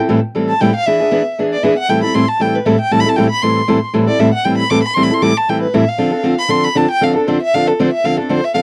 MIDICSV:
0, 0, Header, 1, 3, 480
1, 0, Start_track
1, 0, Key_signature, 0, "minor"
1, 0, Tempo, 256520
1, 1604, Time_signature, 4, 2, 24, 8
1, 16130, End_track
2, 0, Start_track
2, 0, Title_t, "Violin"
2, 0, Program_c, 0, 40
2, 907, Note_on_c, 0, 81, 85
2, 1137, Note_on_c, 0, 79, 84
2, 1165, Note_off_c, 0, 81, 0
2, 1395, Note_off_c, 0, 79, 0
2, 1408, Note_on_c, 0, 77, 114
2, 1614, Note_on_c, 0, 76, 95
2, 1642, Note_off_c, 0, 77, 0
2, 2568, Note_off_c, 0, 76, 0
2, 2856, Note_on_c, 0, 74, 79
2, 3050, Note_on_c, 0, 76, 82
2, 3078, Note_off_c, 0, 74, 0
2, 3311, Note_off_c, 0, 76, 0
2, 3339, Note_on_c, 0, 78, 113
2, 3544, Note_on_c, 0, 79, 94
2, 3572, Note_off_c, 0, 78, 0
2, 3788, Note_off_c, 0, 79, 0
2, 3800, Note_on_c, 0, 83, 89
2, 4007, Note_on_c, 0, 84, 90
2, 4035, Note_off_c, 0, 83, 0
2, 4270, Note_on_c, 0, 81, 94
2, 4298, Note_off_c, 0, 84, 0
2, 4517, Note_on_c, 0, 79, 83
2, 4545, Note_off_c, 0, 81, 0
2, 4772, Note_on_c, 0, 71, 69
2, 4800, Note_off_c, 0, 79, 0
2, 4969, Note_on_c, 0, 76, 80
2, 4997, Note_off_c, 0, 71, 0
2, 5231, Note_off_c, 0, 76, 0
2, 5244, Note_on_c, 0, 79, 97
2, 5458, Note_on_c, 0, 81, 97
2, 5486, Note_off_c, 0, 79, 0
2, 5615, Note_on_c, 0, 83, 102
2, 5644, Note_off_c, 0, 81, 0
2, 5781, Note_on_c, 0, 81, 78
2, 5809, Note_off_c, 0, 83, 0
2, 5914, Note_on_c, 0, 79, 81
2, 5942, Note_off_c, 0, 81, 0
2, 6164, Note_off_c, 0, 79, 0
2, 6176, Note_on_c, 0, 83, 106
2, 6403, Note_on_c, 0, 84, 91
2, 6431, Note_off_c, 0, 83, 0
2, 7255, Note_off_c, 0, 84, 0
2, 7628, Note_on_c, 0, 74, 91
2, 7855, Note_on_c, 0, 76, 81
2, 7883, Note_off_c, 0, 74, 0
2, 8095, Note_off_c, 0, 76, 0
2, 8106, Note_on_c, 0, 78, 104
2, 8316, Note_on_c, 0, 79, 88
2, 8344, Note_off_c, 0, 78, 0
2, 8554, Note_off_c, 0, 79, 0
2, 8565, Note_on_c, 0, 83, 93
2, 8789, Note_on_c, 0, 86, 95
2, 8817, Note_off_c, 0, 83, 0
2, 9025, Note_off_c, 0, 86, 0
2, 9036, Note_on_c, 0, 83, 106
2, 9244, Note_on_c, 0, 84, 102
2, 9272, Note_off_c, 0, 83, 0
2, 9416, Note_on_c, 0, 83, 94
2, 9444, Note_off_c, 0, 84, 0
2, 9609, Note_on_c, 0, 84, 85
2, 9637, Note_off_c, 0, 83, 0
2, 9768, Note_on_c, 0, 86, 99
2, 9796, Note_off_c, 0, 84, 0
2, 10052, Note_on_c, 0, 81, 100
2, 10080, Note_off_c, 0, 86, 0
2, 10276, Note_on_c, 0, 79, 85
2, 10304, Note_off_c, 0, 81, 0
2, 10509, Note_off_c, 0, 79, 0
2, 10520, Note_on_c, 0, 71, 67
2, 10744, Note_on_c, 0, 76, 80
2, 10772, Note_off_c, 0, 71, 0
2, 11001, Note_on_c, 0, 77, 84
2, 11029, Note_off_c, 0, 76, 0
2, 11690, Note_off_c, 0, 77, 0
2, 11958, Note_on_c, 0, 83, 100
2, 12168, Note_on_c, 0, 84, 94
2, 12196, Note_off_c, 0, 83, 0
2, 12425, Note_on_c, 0, 83, 93
2, 12453, Note_off_c, 0, 84, 0
2, 12661, Note_on_c, 0, 81, 86
2, 12689, Note_off_c, 0, 83, 0
2, 12917, Note_off_c, 0, 81, 0
2, 12929, Note_on_c, 0, 79, 106
2, 13162, Note_on_c, 0, 77, 90
2, 13190, Note_off_c, 0, 79, 0
2, 13390, Note_off_c, 0, 77, 0
2, 13401, Note_on_c, 0, 69, 54
2, 13605, Note_on_c, 0, 72, 78
2, 13634, Note_off_c, 0, 69, 0
2, 13869, Note_off_c, 0, 72, 0
2, 13893, Note_on_c, 0, 76, 111
2, 14109, Note_on_c, 0, 77, 104
2, 14137, Note_off_c, 0, 76, 0
2, 14363, Note_on_c, 0, 69, 82
2, 14391, Note_off_c, 0, 77, 0
2, 14587, Note_on_c, 0, 72, 85
2, 14615, Note_off_c, 0, 69, 0
2, 14823, Note_off_c, 0, 72, 0
2, 14834, Note_on_c, 0, 76, 99
2, 15064, Note_on_c, 0, 77, 102
2, 15092, Note_off_c, 0, 76, 0
2, 15318, Note_off_c, 0, 77, 0
2, 15334, Note_on_c, 0, 69, 58
2, 15541, Note_on_c, 0, 72, 94
2, 15569, Note_off_c, 0, 69, 0
2, 15800, Note_on_c, 0, 76, 95
2, 15828, Note_off_c, 0, 72, 0
2, 15972, Note_off_c, 0, 76, 0
2, 15984, Note_on_c, 0, 77, 88
2, 16130, Note_off_c, 0, 77, 0
2, 16130, End_track
3, 0, Start_track
3, 0, Title_t, "Steel-string acoustic guitar"
3, 0, Program_c, 1, 25
3, 163, Note_on_c, 1, 52, 91
3, 165, Note_on_c, 1, 45, 94
3, 172, Note_on_c, 1, 55, 88
3, 172, Note_on_c, 1, 60, 95
3, 179, Note_on_c, 1, 64, 94
3, 182, Note_on_c, 1, 69, 89
3, 350, Note_off_c, 1, 52, 0
3, 351, Note_off_c, 1, 45, 0
3, 354, Note_off_c, 1, 55, 0
3, 354, Note_off_c, 1, 60, 0
3, 358, Note_off_c, 1, 64, 0
3, 359, Note_off_c, 1, 69, 0
3, 648, Note_on_c, 1, 45, 58
3, 650, Note_on_c, 1, 52, 63
3, 658, Note_on_c, 1, 55, 63
3, 664, Note_on_c, 1, 60, 63
3, 667, Note_on_c, 1, 64, 59
3, 668, Note_on_c, 1, 69, 75
3, 981, Note_off_c, 1, 45, 0
3, 982, Note_off_c, 1, 52, 0
3, 986, Note_off_c, 1, 55, 0
3, 989, Note_off_c, 1, 60, 0
3, 990, Note_off_c, 1, 64, 0
3, 991, Note_off_c, 1, 69, 0
3, 1131, Note_on_c, 1, 45, 84
3, 1142, Note_on_c, 1, 55, 98
3, 1143, Note_on_c, 1, 52, 85
3, 1155, Note_on_c, 1, 60, 89
3, 1155, Note_on_c, 1, 64, 88
3, 1160, Note_on_c, 1, 69, 88
3, 1313, Note_off_c, 1, 45, 0
3, 1319, Note_off_c, 1, 52, 0
3, 1319, Note_off_c, 1, 55, 0
3, 1325, Note_off_c, 1, 60, 0
3, 1326, Note_off_c, 1, 64, 0
3, 1328, Note_off_c, 1, 69, 0
3, 1633, Note_on_c, 1, 52, 76
3, 1634, Note_on_c, 1, 59, 82
3, 1637, Note_on_c, 1, 62, 92
3, 1643, Note_on_c, 1, 68, 79
3, 1855, Note_off_c, 1, 68, 0
3, 1872, Note_off_c, 1, 52, 0
3, 1873, Note_off_c, 1, 59, 0
3, 1874, Note_off_c, 1, 62, 0
3, 1877, Note_on_c, 1, 68, 56
3, 1907, Note_on_c, 1, 62, 49
3, 1913, Note_on_c, 1, 59, 49
3, 2063, Note_off_c, 1, 59, 0
3, 2069, Note_off_c, 1, 62, 0
3, 2074, Note_off_c, 1, 68, 0
3, 2081, Note_on_c, 1, 52, 87
3, 2086, Note_on_c, 1, 59, 93
3, 2091, Note_on_c, 1, 62, 93
3, 2096, Note_on_c, 1, 68, 92
3, 2268, Note_off_c, 1, 52, 0
3, 2270, Note_off_c, 1, 59, 0
3, 2273, Note_off_c, 1, 62, 0
3, 2276, Note_off_c, 1, 68, 0
3, 2595, Note_on_c, 1, 52, 58
3, 2603, Note_on_c, 1, 59, 55
3, 2604, Note_on_c, 1, 62, 75
3, 2616, Note_on_c, 1, 68, 63
3, 2913, Note_off_c, 1, 52, 0
3, 2918, Note_off_c, 1, 59, 0
3, 2918, Note_off_c, 1, 62, 0
3, 2924, Note_off_c, 1, 68, 0
3, 3053, Note_on_c, 1, 52, 86
3, 3061, Note_on_c, 1, 59, 92
3, 3072, Note_on_c, 1, 68, 94
3, 3073, Note_on_c, 1, 62, 90
3, 3234, Note_off_c, 1, 52, 0
3, 3238, Note_off_c, 1, 59, 0
3, 3243, Note_off_c, 1, 68, 0
3, 3244, Note_off_c, 1, 62, 0
3, 3527, Note_on_c, 1, 45, 72
3, 3537, Note_on_c, 1, 55, 75
3, 3539, Note_on_c, 1, 52, 70
3, 3540, Note_on_c, 1, 60, 72
3, 3546, Note_on_c, 1, 64, 85
3, 3550, Note_on_c, 1, 69, 79
3, 3779, Note_off_c, 1, 45, 0
3, 3780, Note_off_c, 1, 69, 0
3, 3784, Note_off_c, 1, 55, 0
3, 3785, Note_off_c, 1, 52, 0
3, 3785, Note_off_c, 1, 60, 0
3, 3788, Note_off_c, 1, 64, 0
3, 3802, Note_on_c, 1, 69, 56
3, 3813, Note_on_c, 1, 64, 50
3, 3828, Note_on_c, 1, 60, 51
3, 3839, Note_on_c, 1, 55, 41
3, 3993, Note_off_c, 1, 55, 0
3, 4001, Note_off_c, 1, 69, 0
3, 4003, Note_off_c, 1, 60, 0
3, 4006, Note_off_c, 1, 64, 0
3, 4009, Note_on_c, 1, 45, 79
3, 4016, Note_on_c, 1, 55, 82
3, 4019, Note_on_c, 1, 52, 76
3, 4025, Note_on_c, 1, 60, 90
3, 4031, Note_on_c, 1, 64, 96
3, 4034, Note_on_c, 1, 69, 83
3, 4191, Note_off_c, 1, 45, 0
3, 4195, Note_off_c, 1, 55, 0
3, 4197, Note_off_c, 1, 52, 0
3, 4200, Note_off_c, 1, 60, 0
3, 4203, Note_off_c, 1, 64, 0
3, 4204, Note_off_c, 1, 69, 0
3, 4485, Note_on_c, 1, 52, 57
3, 4486, Note_on_c, 1, 45, 52
3, 4491, Note_on_c, 1, 55, 60
3, 4497, Note_on_c, 1, 60, 67
3, 4507, Note_on_c, 1, 64, 71
3, 4514, Note_on_c, 1, 69, 62
3, 4819, Note_off_c, 1, 45, 0
3, 4819, Note_off_c, 1, 52, 0
3, 4822, Note_off_c, 1, 55, 0
3, 4825, Note_off_c, 1, 60, 0
3, 4830, Note_off_c, 1, 64, 0
3, 4833, Note_off_c, 1, 69, 0
3, 4975, Note_on_c, 1, 45, 95
3, 4976, Note_on_c, 1, 52, 76
3, 4977, Note_on_c, 1, 60, 85
3, 4978, Note_on_c, 1, 55, 85
3, 4986, Note_on_c, 1, 64, 85
3, 4990, Note_on_c, 1, 69, 89
3, 5155, Note_off_c, 1, 45, 0
3, 5155, Note_off_c, 1, 52, 0
3, 5156, Note_off_c, 1, 55, 0
3, 5156, Note_off_c, 1, 60, 0
3, 5160, Note_off_c, 1, 64, 0
3, 5162, Note_off_c, 1, 69, 0
3, 5450, Note_on_c, 1, 45, 70
3, 5451, Note_on_c, 1, 52, 75
3, 5459, Note_on_c, 1, 55, 76
3, 5459, Note_on_c, 1, 60, 72
3, 5461, Note_on_c, 1, 64, 80
3, 5470, Note_on_c, 1, 69, 72
3, 5692, Note_off_c, 1, 69, 0
3, 5698, Note_off_c, 1, 64, 0
3, 5701, Note_off_c, 1, 45, 0
3, 5701, Note_off_c, 1, 52, 0
3, 5705, Note_off_c, 1, 55, 0
3, 5705, Note_off_c, 1, 60, 0
3, 5714, Note_on_c, 1, 69, 57
3, 5720, Note_on_c, 1, 64, 49
3, 5735, Note_on_c, 1, 60, 47
3, 5743, Note_on_c, 1, 55, 44
3, 5917, Note_off_c, 1, 69, 0
3, 5920, Note_off_c, 1, 64, 0
3, 5925, Note_off_c, 1, 55, 0
3, 5928, Note_off_c, 1, 60, 0
3, 5937, Note_on_c, 1, 45, 83
3, 5942, Note_on_c, 1, 52, 83
3, 5948, Note_on_c, 1, 55, 83
3, 5949, Note_on_c, 1, 60, 88
3, 5952, Note_on_c, 1, 64, 92
3, 5952, Note_on_c, 1, 69, 89
3, 6116, Note_off_c, 1, 45, 0
3, 6118, Note_off_c, 1, 52, 0
3, 6121, Note_off_c, 1, 55, 0
3, 6122, Note_off_c, 1, 60, 0
3, 6123, Note_off_c, 1, 64, 0
3, 6123, Note_off_c, 1, 69, 0
3, 6415, Note_on_c, 1, 45, 58
3, 6417, Note_on_c, 1, 52, 70
3, 6424, Note_on_c, 1, 55, 67
3, 6424, Note_on_c, 1, 60, 66
3, 6431, Note_on_c, 1, 69, 67
3, 6434, Note_on_c, 1, 64, 63
3, 6744, Note_off_c, 1, 45, 0
3, 6745, Note_off_c, 1, 52, 0
3, 6749, Note_off_c, 1, 55, 0
3, 6749, Note_off_c, 1, 60, 0
3, 6752, Note_off_c, 1, 69, 0
3, 6754, Note_off_c, 1, 64, 0
3, 6880, Note_on_c, 1, 45, 74
3, 6888, Note_on_c, 1, 52, 89
3, 6890, Note_on_c, 1, 60, 96
3, 6894, Note_on_c, 1, 55, 84
3, 6897, Note_on_c, 1, 64, 97
3, 6910, Note_on_c, 1, 69, 89
3, 7068, Note_off_c, 1, 45, 0
3, 7072, Note_off_c, 1, 52, 0
3, 7073, Note_off_c, 1, 60, 0
3, 7075, Note_off_c, 1, 55, 0
3, 7076, Note_off_c, 1, 64, 0
3, 7083, Note_off_c, 1, 69, 0
3, 7365, Note_on_c, 1, 45, 79
3, 7365, Note_on_c, 1, 52, 84
3, 7372, Note_on_c, 1, 55, 82
3, 7374, Note_on_c, 1, 60, 77
3, 7377, Note_on_c, 1, 64, 77
3, 7382, Note_on_c, 1, 69, 86
3, 7617, Note_off_c, 1, 69, 0
3, 7618, Note_off_c, 1, 45, 0
3, 7618, Note_off_c, 1, 52, 0
3, 7622, Note_off_c, 1, 55, 0
3, 7623, Note_off_c, 1, 60, 0
3, 7625, Note_off_c, 1, 64, 0
3, 7639, Note_on_c, 1, 69, 52
3, 7651, Note_on_c, 1, 60, 45
3, 7651, Note_on_c, 1, 64, 46
3, 7661, Note_on_c, 1, 55, 38
3, 7830, Note_off_c, 1, 55, 0
3, 7832, Note_off_c, 1, 60, 0
3, 7839, Note_off_c, 1, 64, 0
3, 7840, Note_off_c, 1, 69, 0
3, 7840, Note_on_c, 1, 45, 88
3, 7842, Note_on_c, 1, 52, 78
3, 7853, Note_on_c, 1, 55, 95
3, 7854, Note_on_c, 1, 60, 88
3, 7862, Note_on_c, 1, 64, 89
3, 7863, Note_on_c, 1, 69, 95
3, 8028, Note_off_c, 1, 45, 0
3, 8029, Note_off_c, 1, 52, 0
3, 8034, Note_off_c, 1, 55, 0
3, 8035, Note_off_c, 1, 60, 0
3, 8038, Note_off_c, 1, 64, 0
3, 8039, Note_off_c, 1, 69, 0
3, 8329, Note_on_c, 1, 52, 65
3, 8332, Note_on_c, 1, 45, 59
3, 8333, Note_on_c, 1, 55, 70
3, 8333, Note_on_c, 1, 64, 64
3, 8344, Note_on_c, 1, 60, 69
3, 8346, Note_on_c, 1, 69, 64
3, 8661, Note_off_c, 1, 52, 0
3, 8663, Note_off_c, 1, 45, 0
3, 8663, Note_off_c, 1, 55, 0
3, 8663, Note_off_c, 1, 64, 0
3, 8669, Note_off_c, 1, 60, 0
3, 8670, Note_off_c, 1, 69, 0
3, 8806, Note_on_c, 1, 55, 91
3, 8807, Note_on_c, 1, 45, 74
3, 8808, Note_on_c, 1, 52, 89
3, 8811, Note_on_c, 1, 60, 94
3, 8822, Note_on_c, 1, 64, 99
3, 8823, Note_on_c, 1, 69, 106
3, 8991, Note_off_c, 1, 45, 0
3, 8991, Note_off_c, 1, 52, 0
3, 8991, Note_off_c, 1, 55, 0
3, 8993, Note_off_c, 1, 60, 0
3, 8999, Note_off_c, 1, 64, 0
3, 8999, Note_off_c, 1, 69, 0
3, 9285, Note_on_c, 1, 45, 71
3, 9289, Note_on_c, 1, 52, 82
3, 9293, Note_on_c, 1, 55, 80
3, 9296, Note_on_c, 1, 64, 84
3, 9300, Note_on_c, 1, 60, 89
3, 9301, Note_on_c, 1, 69, 78
3, 9535, Note_off_c, 1, 69, 0
3, 9538, Note_off_c, 1, 45, 0
3, 9540, Note_off_c, 1, 52, 0
3, 9542, Note_off_c, 1, 55, 0
3, 9544, Note_off_c, 1, 64, 0
3, 9546, Note_off_c, 1, 60, 0
3, 9558, Note_on_c, 1, 69, 50
3, 9572, Note_on_c, 1, 64, 53
3, 9584, Note_on_c, 1, 60, 50
3, 9599, Note_on_c, 1, 55, 48
3, 9746, Note_off_c, 1, 60, 0
3, 9748, Note_off_c, 1, 55, 0
3, 9755, Note_off_c, 1, 64, 0
3, 9759, Note_off_c, 1, 69, 0
3, 9764, Note_on_c, 1, 45, 72
3, 9766, Note_on_c, 1, 52, 89
3, 9769, Note_on_c, 1, 60, 90
3, 9770, Note_on_c, 1, 55, 90
3, 9777, Note_on_c, 1, 64, 86
3, 9780, Note_on_c, 1, 69, 90
3, 9950, Note_off_c, 1, 45, 0
3, 9951, Note_off_c, 1, 52, 0
3, 9952, Note_off_c, 1, 60, 0
3, 9953, Note_off_c, 1, 55, 0
3, 9956, Note_off_c, 1, 64, 0
3, 9958, Note_off_c, 1, 69, 0
3, 10264, Note_on_c, 1, 45, 50
3, 10273, Note_on_c, 1, 52, 70
3, 10276, Note_on_c, 1, 55, 60
3, 10276, Note_on_c, 1, 64, 62
3, 10279, Note_on_c, 1, 60, 62
3, 10287, Note_on_c, 1, 69, 71
3, 10589, Note_off_c, 1, 45, 0
3, 10594, Note_off_c, 1, 52, 0
3, 10595, Note_off_c, 1, 55, 0
3, 10595, Note_off_c, 1, 64, 0
3, 10596, Note_off_c, 1, 60, 0
3, 10601, Note_off_c, 1, 69, 0
3, 10736, Note_on_c, 1, 45, 90
3, 10737, Note_on_c, 1, 52, 92
3, 10743, Note_on_c, 1, 55, 85
3, 10744, Note_on_c, 1, 60, 76
3, 10746, Note_on_c, 1, 69, 90
3, 10748, Note_on_c, 1, 64, 90
3, 10916, Note_off_c, 1, 45, 0
3, 10916, Note_off_c, 1, 52, 0
3, 10919, Note_off_c, 1, 55, 0
3, 10920, Note_off_c, 1, 60, 0
3, 10921, Note_off_c, 1, 69, 0
3, 10922, Note_off_c, 1, 64, 0
3, 11192, Note_on_c, 1, 53, 71
3, 11194, Note_on_c, 1, 50, 75
3, 11198, Note_on_c, 1, 60, 85
3, 11207, Note_on_c, 1, 62, 76
3, 11211, Note_on_c, 1, 69, 83
3, 11424, Note_off_c, 1, 69, 0
3, 11437, Note_off_c, 1, 62, 0
3, 11447, Note_on_c, 1, 69, 57
3, 11448, Note_off_c, 1, 60, 0
3, 11452, Note_off_c, 1, 53, 0
3, 11453, Note_off_c, 1, 50, 0
3, 11459, Note_on_c, 1, 62, 51
3, 11471, Note_on_c, 1, 60, 44
3, 11649, Note_off_c, 1, 60, 0
3, 11656, Note_off_c, 1, 62, 0
3, 11660, Note_on_c, 1, 50, 84
3, 11664, Note_off_c, 1, 69, 0
3, 11670, Note_on_c, 1, 53, 82
3, 11671, Note_on_c, 1, 60, 95
3, 11679, Note_on_c, 1, 62, 82
3, 11683, Note_on_c, 1, 69, 90
3, 11858, Note_off_c, 1, 50, 0
3, 11863, Note_off_c, 1, 53, 0
3, 11863, Note_off_c, 1, 60, 0
3, 11867, Note_off_c, 1, 62, 0
3, 11869, Note_off_c, 1, 69, 0
3, 12132, Note_on_c, 1, 50, 60
3, 12134, Note_on_c, 1, 53, 61
3, 12146, Note_on_c, 1, 69, 69
3, 12148, Note_on_c, 1, 60, 67
3, 12150, Note_on_c, 1, 62, 61
3, 12483, Note_off_c, 1, 50, 0
3, 12484, Note_off_c, 1, 53, 0
3, 12490, Note_off_c, 1, 69, 0
3, 12491, Note_off_c, 1, 60, 0
3, 12492, Note_off_c, 1, 62, 0
3, 12633, Note_on_c, 1, 50, 84
3, 12635, Note_on_c, 1, 53, 91
3, 12639, Note_on_c, 1, 62, 89
3, 12645, Note_on_c, 1, 60, 84
3, 12649, Note_on_c, 1, 69, 95
3, 12824, Note_off_c, 1, 50, 0
3, 12825, Note_off_c, 1, 53, 0
3, 12827, Note_off_c, 1, 62, 0
3, 12830, Note_off_c, 1, 60, 0
3, 12832, Note_off_c, 1, 69, 0
3, 13116, Note_on_c, 1, 50, 73
3, 13122, Note_on_c, 1, 53, 69
3, 13122, Note_on_c, 1, 60, 87
3, 13132, Note_on_c, 1, 69, 85
3, 13134, Note_on_c, 1, 62, 80
3, 13367, Note_off_c, 1, 69, 0
3, 13374, Note_off_c, 1, 50, 0
3, 13377, Note_off_c, 1, 53, 0
3, 13377, Note_off_c, 1, 60, 0
3, 13383, Note_off_c, 1, 62, 0
3, 13390, Note_on_c, 1, 69, 53
3, 13407, Note_on_c, 1, 62, 51
3, 13424, Note_on_c, 1, 60, 42
3, 13595, Note_off_c, 1, 69, 0
3, 13598, Note_off_c, 1, 60, 0
3, 13604, Note_off_c, 1, 62, 0
3, 13616, Note_on_c, 1, 50, 93
3, 13621, Note_on_c, 1, 60, 104
3, 13627, Note_on_c, 1, 53, 83
3, 13628, Note_on_c, 1, 62, 88
3, 13634, Note_on_c, 1, 69, 90
3, 13795, Note_off_c, 1, 50, 0
3, 13798, Note_off_c, 1, 60, 0
3, 13801, Note_off_c, 1, 53, 0
3, 13801, Note_off_c, 1, 62, 0
3, 13804, Note_off_c, 1, 69, 0
3, 14103, Note_on_c, 1, 50, 64
3, 14121, Note_on_c, 1, 53, 70
3, 14124, Note_on_c, 1, 62, 74
3, 14127, Note_on_c, 1, 60, 63
3, 14134, Note_on_c, 1, 69, 61
3, 14428, Note_off_c, 1, 50, 0
3, 14437, Note_off_c, 1, 53, 0
3, 14438, Note_off_c, 1, 62, 0
3, 14440, Note_off_c, 1, 60, 0
3, 14443, Note_off_c, 1, 69, 0
3, 14585, Note_on_c, 1, 50, 87
3, 14591, Note_on_c, 1, 60, 96
3, 14592, Note_on_c, 1, 53, 92
3, 14599, Note_on_c, 1, 69, 109
3, 14600, Note_on_c, 1, 62, 89
3, 14760, Note_off_c, 1, 50, 0
3, 14763, Note_off_c, 1, 53, 0
3, 14763, Note_off_c, 1, 60, 0
3, 14767, Note_off_c, 1, 62, 0
3, 14767, Note_off_c, 1, 69, 0
3, 15044, Note_on_c, 1, 50, 76
3, 15053, Note_on_c, 1, 53, 69
3, 15067, Note_on_c, 1, 60, 83
3, 15069, Note_on_c, 1, 62, 85
3, 15075, Note_on_c, 1, 69, 74
3, 15275, Note_off_c, 1, 69, 0
3, 15296, Note_off_c, 1, 62, 0
3, 15297, Note_on_c, 1, 69, 46
3, 15298, Note_off_c, 1, 50, 0
3, 15302, Note_off_c, 1, 53, 0
3, 15309, Note_off_c, 1, 60, 0
3, 15319, Note_on_c, 1, 62, 48
3, 15335, Note_on_c, 1, 60, 39
3, 15505, Note_off_c, 1, 60, 0
3, 15506, Note_off_c, 1, 62, 0
3, 15508, Note_off_c, 1, 69, 0
3, 15517, Note_on_c, 1, 50, 84
3, 15523, Note_on_c, 1, 53, 85
3, 15528, Note_on_c, 1, 60, 85
3, 15528, Note_on_c, 1, 62, 94
3, 15536, Note_on_c, 1, 69, 103
3, 15706, Note_off_c, 1, 50, 0
3, 15709, Note_off_c, 1, 53, 0
3, 15711, Note_off_c, 1, 60, 0
3, 15711, Note_off_c, 1, 62, 0
3, 15715, Note_off_c, 1, 69, 0
3, 15981, Note_on_c, 1, 50, 59
3, 15989, Note_on_c, 1, 60, 59
3, 15990, Note_on_c, 1, 53, 61
3, 15999, Note_on_c, 1, 69, 69
3, 16004, Note_on_c, 1, 62, 70
3, 16130, Note_off_c, 1, 50, 0
3, 16130, Note_off_c, 1, 53, 0
3, 16130, Note_off_c, 1, 60, 0
3, 16130, Note_off_c, 1, 62, 0
3, 16130, Note_off_c, 1, 69, 0
3, 16130, End_track
0, 0, End_of_file